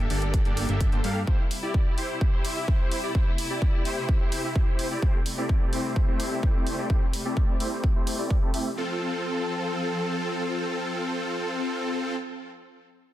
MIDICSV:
0, 0, Header, 1, 5, 480
1, 0, Start_track
1, 0, Key_signature, -1, "major"
1, 0, Tempo, 468750
1, 1305, Time_signature, 4, 2, 24, 8
1, 13450, End_track
2, 0, Start_track
2, 0, Title_t, "Supersaw synth"
2, 0, Program_c, 0, 81
2, 106, Note_on_c, 0, 58, 77
2, 106, Note_on_c, 0, 62, 67
2, 106, Note_on_c, 0, 74, 83
2, 107, Note_on_c, 0, 67, 72
2, 107, Note_on_c, 0, 69, 73
2, 436, Note_off_c, 0, 58, 0
2, 436, Note_off_c, 0, 62, 0
2, 436, Note_off_c, 0, 74, 0
2, 437, Note_off_c, 0, 67, 0
2, 437, Note_off_c, 0, 69, 0
2, 466, Note_on_c, 0, 58, 86
2, 466, Note_on_c, 0, 62, 80
2, 466, Note_on_c, 0, 67, 82
2, 466, Note_on_c, 0, 69, 80
2, 466, Note_on_c, 0, 74, 92
2, 681, Note_off_c, 0, 58, 0
2, 681, Note_off_c, 0, 62, 0
2, 681, Note_off_c, 0, 67, 0
2, 681, Note_off_c, 0, 69, 0
2, 681, Note_off_c, 0, 74, 0
2, 705, Note_on_c, 0, 58, 92
2, 705, Note_on_c, 0, 62, 81
2, 706, Note_on_c, 0, 67, 83
2, 706, Note_on_c, 0, 69, 81
2, 706, Note_on_c, 0, 76, 96
2, 916, Note_off_c, 0, 58, 0
2, 916, Note_off_c, 0, 62, 0
2, 916, Note_off_c, 0, 67, 0
2, 916, Note_off_c, 0, 69, 0
2, 916, Note_off_c, 0, 76, 0
2, 944, Note_on_c, 0, 72, 101
2, 945, Note_on_c, 0, 58, 90
2, 945, Note_on_c, 0, 62, 84
2, 945, Note_on_c, 0, 67, 80
2, 945, Note_on_c, 0, 69, 83
2, 1036, Note_off_c, 0, 58, 0
2, 1036, Note_off_c, 0, 62, 0
2, 1036, Note_off_c, 0, 67, 0
2, 1036, Note_off_c, 0, 69, 0
2, 1036, Note_off_c, 0, 72, 0
2, 1064, Note_on_c, 0, 58, 82
2, 1064, Note_on_c, 0, 62, 76
2, 1064, Note_on_c, 0, 67, 77
2, 1064, Note_on_c, 0, 69, 76
2, 1064, Note_on_c, 0, 77, 90
2, 1226, Note_off_c, 0, 58, 0
2, 1226, Note_off_c, 0, 62, 0
2, 1226, Note_off_c, 0, 67, 0
2, 1226, Note_off_c, 0, 69, 0
2, 1227, Note_off_c, 0, 77, 0
2, 1305, Note_on_c, 0, 67, 76
2, 1306, Note_on_c, 0, 64, 84
2, 1306, Note_on_c, 0, 72, 92
2, 1467, Note_off_c, 0, 64, 0
2, 1467, Note_off_c, 0, 67, 0
2, 1467, Note_off_c, 0, 72, 0
2, 1665, Note_on_c, 0, 64, 85
2, 1665, Note_on_c, 0, 67, 78
2, 1665, Note_on_c, 0, 74, 92
2, 1996, Note_off_c, 0, 64, 0
2, 1996, Note_off_c, 0, 67, 0
2, 1996, Note_off_c, 0, 74, 0
2, 2025, Note_on_c, 0, 64, 77
2, 2025, Note_on_c, 0, 67, 68
2, 2025, Note_on_c, 0, 72, 82
2, 2356, Note_off_c, 0, 64, 0
2, 2356, Note_off_c, 0, 67, 0
2, 2356, Note_off_c, 0, 72, 0
2, 2385, Note_on_c, 0, 64, 82
2, 2385, Note_on_c, 0, 72, 92
2, 2386, Note_on_c, 0, 67, 75
2, 2601, Note_off_c, 0, 64, 0
2, 2601, Note_off_c, 0, 67, 0
2, 2601, Note_off_c, 0, 72, 0
2, 2626, Note_on_c, 0, 64, 75
2, 2626, Note_on_c, 0, 67, 69
2, 2626, Note_on_c, 0, 76, 82
2, 2716, Note_off_c, 0, 64, 0
2, 2716, Note_off_c, 0, 67, 0
2, 2716, Note_off_c, 0, 76, 0
2, 2746, Note_on_c, 0, 72, 93
2, 3077, Note_off_c, 0, 72, 0
2, 3105, Note_on_c, 0, 64, 96
2, 3105, Note_on_c, 0, 67, 84
2, 3105, Note_on_c, 0, 74, 105
2, 3196, Note_off_c, 0, 64, 0
2, 3196, Note_off_c, 0, 67, 0
2, 3196, Note_off_c, 0, 74, 0
2, 3585, Note_on_c, 0, 67, 79
2, 3585, Note_on_c, 0, 74, 88
2, 3586, Note_on_c, 0, 64, 83
2, 3916, Note_off_c, 0, 64, 0
2, 3916, Note_off_c, 0, 67, 0
2, 3916, Note_off_c, 0, 74, 0
2, 3945, Note_on_c, 0, 64, 75
2, 3946, Note_on_c, 0, 67, 69
2, 3946, Note_on_c, 0, 72, 82
2, 4276, Note_off_c, 0, 64, 0
2, 4276, Note_off_c, 0, 67, 0
2, 4276, Note_off_c, 0, 72, 0
2, 4306, Note_on_c, 0, 64, 85
2, 4306, Note_on_c, 0, 67, 79
2, 4306, Note_on_c, 0, 72, 93
2, 4521, Note_off_c, 0, 64, 0
2, 4521, Note_off_c, 0, 67, 0
2, 4521, Note_off_c, 0, 72, 0
2, 4547, Note_on_c, 0, 64, 73
2, 4547, Note_on_c, 0, 67, 65
2, 4547, Note_on_c, 0, 76, 83
2, 4637, Note_off_c, 0, 64, 0
2, 4637, Note_off_c, 0, 67, 0
2, 4637, Note_off_c, 0, 76, 0
2, 4667, Note_on_c, 0, 67, 73
2, 4997, Note_off_c, 0, 67, 0
2, 5026, Note_on_c, 0, 67, 84
2, 5027, Note_on_c, 0, 64, 95
2, 5027, Note_on_c, 0, 74, 102
2, 5117, Note_off_c, 0, 64, 0
2, 5117, Note_off_c, 0, 67, 0
2, 5117, Note_off_c, 0, 74, 0
2, 5146, Note_on_c, 0, 60, 75
2, 5146, Note_on_c, 0, 67, 78
2, 5147, Note_on_c, 0, 57, 81
2, 5307, Note_off_c, 0, 60, 0
2, 5307, Note_off_c, 0, 67, 0
2, 5308, Note_off_c, 0, 57, 0
2, 5506, Note_on_c, 0, 67, 76
2, 5507, Note_on_c, 0, 57, 81
2, 5507, Note_on_c, 0, 60, 79
2, 5507, Note_on_c, 0, 64, 74
2, 5507, Note_on_c, 0, 74, 96
2, 5836, Note_off_c, 0, 67, 0
2, 5837, Note_off_c, 0, 57, 0
2, 5837, Note_off_c, 0, 60, 0
2, 5837, Note_off_c, 0, 64, 0
2, 5837, Note_off_c, 0, 74, 0
2, 5865, Note_on_c, 0, 64, 72
2, 5865, Note_on_c, 0, 67, 67
2, 5866, Note_on_c, 0, 57, 77
2, 5866, Note_on_c, 0, 60, 71
2, 5866, Note_on_c, 0, 72, 81
2, 6196, Note_off_c, 0, 57, 0
2, 6196, Note_off_c, 0, 60, 0
2, 6196, Note_off_c, 0, 64, 0
2, 6196, Note_off_c, 0, 67, 0
2, 6196, Note_off_c, 0, 72, 0
2, 6226, Note_on_c, 0, 57, 83
2, 6226, Note_on_c, 0, 60, 75
2, 6226, Note_on_c, 0, 64, 80
2, 6226, Note_on_c, 0, 67, 77
2, 6226, Note_on_c, 0, 72, 94
2, 6441, Note_off_c, 0, 57, 0
2, 6441, Note_off_c, 0, 60, 0
2, 6441, Note_off_c, 0, 64, 0
2, 6441, Note_off_c, 0, 67, 0
2, 6441, Note_off_c, 0, 72, 0
2, 6465, Note_on_c, 0, 64, 68
2, 6465, Note_on_c, 0, 76, 83
2, 6466, Note_on_c, 0, 57, 73
2, 6466, Note_on_c, 0, 60, 68
2, 6466, Note_on_c, 0, 67, 69
2, 6556, Note_off_c, 0, 57, 0
2, 6556, Note_off_c, 0, 60, 0
2, 6556, Note_off_c, 0, 64, 0
2, 6556, Note_off_c, 0, 67, 0
2, 6556, Note_off_c, 0, 76, 0
2, 6585, Note_on_c, 0, 64, 70
2, 6586, Note_on_c, 0, 57, 86
2, 6586, Note_on_c, 0, 60, 72
2, 6586, Note_on_c, 0, 67, 70
2, 6586, Note_on_c, 0, 72, 92
2, 6916, Note_off_c, 0, 57, 0
2, 6916, Note_off_c, 0, 60, 0
2, 6916, Note_off_c, 0, 64, 0
2, 6916, Note_off_c, 0, 67, 0
2, 6916, Note_off_c, 0, 72, 0
2, 6944, Note_on_c, 0, 60, 81
2, 6944, Note_on_c, 0, 64, 86
2, 6945, Note_on_c, 0, 57, 89
2, 6945, Note_on_c, 0, 67, 82
2, 6945, Note_on_c, 0, 74, 100
2, 7035, Note_off_c, 0, 64, 0
2, 7036, Note_off_c, 0, 57, 0
2, 7036, Note_off_c, 0, 60, 0
2, 7036, Note_off_c, 0, 67, 0
2, 7036, Note_off_c, 0, 74, 0
2, 7066, Note_on_c, 0, 57, 81
2, 7066, Note_on_c, 0, 60, 76
2, 7066, Note_on_c, 0, 72, 93
2, 7067, Note_on_c, 0, 64, 77
2, 7067, Note_on_c, 0, 67, 72
2, 7227, Note_off_c, 0, 57, 0
2, 7227, Note_off_c, 0, 60, 0
2, 7227, Note_off_c, 0, 72, 0
2, 7228, Note_off_c, 0, 64, 0
2, 7228, Note_off_c, 0, 67, 0
2, 7425, Note_on_c, 0, 60, 78
2, 7426, Note_on_c, 0, 57, 81
2, 7426, Note_on_c, 0, 64, 77
2, 7426, Note_on_c, 0, 67, 73
2, 7426, Note_on_c, 0, 74, 94
2, 7756, Note_off_c, 0, 57, 0
2, 7756, Note_off_c, 0, 60, 0
2, 7756, Note_off_c, 0, 64, 0
2, 7756, Note_off_c, 0, 67, 0
2, 7756, Note_off_c, 0, 74, 0
2, 7784, Note_on_c, 0, 57, 74
2, 7784, Note_on_c, 0, 64, 66
2, 7784, Note_on_c, 0, 67, 70
2, 7784, Note_on_c, 0, 72, 82
2, 7785, Note_on_c, 0, 60, 70
2, 8115, Note_off_c, 0, 57, 0
2, 8115, Note_off_c, 0, 67, 0
2, 8116, Note_off_c, 0, 60, 0
2, 8116, Note_off_c, 0, 64, 0
2, 8116, Note_off_c, 0, 72, 0
2, 8144, Note_on_c, 0, 57, 83
2, 8144, Note_on_c, 0, 60, 77
2, 8144, Note_on_c, 0, 64, 75
2, 8144, Note_on_c, 0, 67, 75
2, 8144, Note_on_c, 0, 72, 92
2, 8360, Note_off_c, 0, 57, 0
2, 8360, Note_off_c, 0, 60, 0
2, 8360, Note_off_c, 0, 64, 0
2, 8360, Note_off_c, 0, 67, 0
2, 8360, Note_off_c, 0, 72, 0
2, 8383, Note_on_c, 0, 57, 88
2, 8383, Note_on_c, 0, 67, 82
2, 8384, Note_on_c, 0, 60, 82
2, 8384, Note_on_c, 0, 64, 82
2, 8384, Note_on_c, 0, 74, 101
2, 8595, Note_off_c, 0, 57, 0
2, 8595, Note_off_c, 0, 60, 0
2, 8595, Note_off_c, 0, 64, 0
2, 8595, Note_off_c, 0, 67, 0
2, 8595, Note_off_c, 0, 74, 0
2, 8624, Note_on_c, 0, 57, 90
2, 8624, Note_on_c, 0, 60, 82
2, 8624, Note_on_c, 0, 64, 85
2, 8624, Note_on_c, 0, 67, 84
2, 8624, Note_on_c, 0, 69, 97
2, 8715, Note_off_c, 0, 57, 0
2, 8715, Note_off_c, 0, 60, 0
2, 8715, Note_off_c, 0, 64, 0
2, 8715, Note_off_c, 0, 67, 0
2, 8715, Note_off_c, 0, 69, 0
2, 8744, Note_on_c, 0, 57, 80
2, 8744, Note_on_c, 0, 60, 76
2, 8744, Note_on_c, 0, 64, 75
2, 8744, Note_on_c, 0, 67, 77
2, 8744, Note_on_c, 0, 76, 90
2, 8906, Note_off_c, 0, 57, 0
2, 8906, Note_off_c, 0, 60, 0
2, 8906, Note_off_c, 0, 64, 0
2, 8906, Note_off_c, 0, 67, 0
2, 8906, Note_off_c, 0, 76, 0
2, 8984, Note_on_c, 0, 60, 82
2, 8984, Note_on_c, 0, 65, 73
2, 8984, Note_on_c, 0, 69, 83
2, 12444, Note_off_c, 0, 60, 0
2, 12444, Note_off_c, 0, 65, 0
2, 12444, Note_off_c, 0, 69, 0
2, 13450, End_track
3, 0, Start_track
3, 0, Title_t, "String section"
3, 0, Program_c, 1, 48
3, 0, Note_on_c, 1, 58, 71
3, 0, Note_on_c, 1, 67, 89
3, 0, Note_on_c, 1, 69, 82
3, 1263, Note_off_c, 1, 67, 0
3, 1266, Note_off_c, 1, 58, 0
3, 1266, Note_off_c, 1, 69, 0
3, 1304, Note_on_c, 1, 55, 68
3, 1304, Note_on_c, 1, 64, 85
3, 1305, Note_on_c, 1, 48, 80
3, 3205, Note_off_c, 1, 55, 0
3, 3224, Note_on_c, 1, 57, 72
3, 5106, Note_off_c, 1, 64, 0
3, 5144, Note_on_c, 1, 55, 72
3, 8943, Note_off_c, 1, 57, 0
3, 8944, Note_off_c, 1, 48, 0
3, 8945, Note_off_c, 1, 55, 0
3, 8983, Note_on_c, 1, 69, 83
3, 8984, Note_on_c, 1, 53, 75
3, 8984, Note_on_c, 1, 60, 69
3, 12443, Note_off_c, 1, 69, 0
3, 12444, Note_off_c, 1, 53, 0
3, 12444, Note_off_c, 1, 60, 0
3, 13450, End_track
4, 0, Start_track
4, 0, Title_t, "Analog synth bass"
4, 0, Program_c, 2, 38
4, 106, Note_on_c, 2, 31, 94
4, 441, Note_off_c, 2, 31, 0
4, 466, Note_on_c, 2, 31, 92
4, 681, Note_off_c, 2, 31, 0
4, 707, Note_on_c, 2, 31, 93
4, 921, Note_off_c, 2, 31, 0
4, 947, Note_on_c, 2, 31, 88
4, 1041, Note_off_c, 2, 31, 0
4, 1066, Note_on_c, 2, 43, 93
4, 1281, Note_off_c, 2, 43, 0
4, 13450, End_track
5, 0, Start_track
5, 0, Title_t, "Drums"
5, 104, Note_on_c, 9, 46, 89
5, 206, Note_off_c, 9, 46, 0
5, 225, Note_on_c, 9, 42, 34
5, 327, Note_off_c, 9, 42, 0
5, 345, Note_on_c, 9, 36, 112
5, 345, Note_on_c, 9, 42, 82
5, 447, Note_off_c, 9, 36, 0
5, 447, Note_off_c, 9, 42, 0
5, 464, Note_on_c, 9, 42, 35
5, 567, Note_off_c, 9, 42, 0
5, 584, Note_on_c, 9, 46, 99
5, 686, Note_off_c, 9, 46, 0
5, 704, Note_on_c, 9, 42, 35
5, 807, Note_off_c, 9, 42, 0
5, 824, Note_on_c, 9, 42, 76
5, 825, Note_on_c, 9, 36, 116
5, 927, Note_off_c, 9, 36, 0
5, 927, Note_off_c, 9, 42, 0
5, 945, Note_on_c, 9, 42, 34
5, 1047, Note_off_c, 9, 42, 0
5, 1065, Note_on_c, 9, 46, 90
5, 1168, Note_off_c, 9, 46, 0
5, 1305, Note_on_c, 9, 36, 108
5, 1407, Note_off_c, 9, 36, 0
5, 1545, Note_on_c, 9, 46, 92
5, 1648, Note_off_c, 9, 46, 0
5, 1785, Note_on_c, 9, 36, 108
5, 1887, Note_off_c, 9, 36, 0
5, 2024, Note_on_c, 9, 46, 82
5, 2126, Note_off_c, 9, 46, 0
5, 2265, Note_on_c, 9, 36, 109
5, 2367, Note_off_c, 9, 36, 0
5, 2504, Note_on_c, 9, 46, 91
5, 2607, Note_off_c, 9, 46, 0
5, 2745, Note_on_c, 9, 36, 112
5, 2847, Note_off_c, 9, 36, 0
5, 2985, Note_on_c, 9, 46, 86
5, 3087, Note_off_c, 9, 46, 0
5, 3225, Note_on_c, 9, 36, 106
5, 3327, Note_off_c, 9, 36, 0
5, 3464, Note_on_c, 9, 46, 93
5, 3567, Note_off_c, 9, 46, 0
5, 3705, Note_on_c, 9, 36, 100
5, 3807, Note_off_c, 9, 36, 0
5, 3946, Note_on_c, 9, 46, 76
5, 4048, Note_off_c, 9, 46, 0
5, 4185, Note_on_c, 9, 36, 105
5, 4287, Note_off_c, 9, 36, 0
5, 4424, Note_on_c, 9, 46, 94
5, 4527, Note_off_c, 9, 46, 0
5, 4665, Note_on_c, 9, 36, 104
5, 4767, Note_off_c, 9, 36, 0
5, 4905, Note_on_c, 9, 46, 83
5, 5007, Note_off_c, 9, 46, 0
5, 5145, Note_on_c, 9, 36, 103
5, 5248, Note_off_c, 9, 36, 0
5, 5384, Note_on_c, 9, 46, 89
5, 5487, Note_off_c, 9, 46, 0
5, 5625, Note_on_c, 9, 36, 105
5, 5727, Note_off_c, 9, 36, 0
5, 5865, Note_on_c, 9, 46, 78
5, 5967, Note_off_c, 9, 46, 0
5, 6105, Note_on_c, 9, 36, 98
5, 6207, Note_off_c, 9, 36, 0
5, 6345, Note_on_c, 9, 46, 89
5, 6448, Note_off_c, 9, 46, 0
5, 6585, Note_on_c, 9, 36, 105
5, 6687, Note_off_c, 9, 36, 0
5, 6826, Note_on_c, 9, 46, 77
5, 6928, Note_off_c, 9, 46, 0
5, 7065, Note_on_c, 9, 36, 104
5, 7167, Note_off_c, 9, 36, 0
5, 7306, Note_on_c, 9, 46, 89
5, 7408, Note_off_c, 9, 46, 0
5, 7544, Note_on_c, 9, 36, 103
5, 7647, Note_off_c, 9, 36, 0
5, 7785, Note_on_c, 9, 46, 81
5, 7888, Note_off_c, 9, 46, 0
5, 8024, Note_on_c, 9, 36, 101
5, 8127, Note_off_c, 9, 36, 0
5, 8263, Note_on_c, 9, 46, 88
5, 8366, Note_off_c, 9, 46, 0
5, 8504, Note_on_c, 9, 36, 103
5, 8606, Note_off_c, 9, 36, 0
5, 8743, Note_on_c, 9, 46, 85
5, 8846, Note_off_c, 9, 46, 0
5, 13450, End_track
0, 0, End_of_file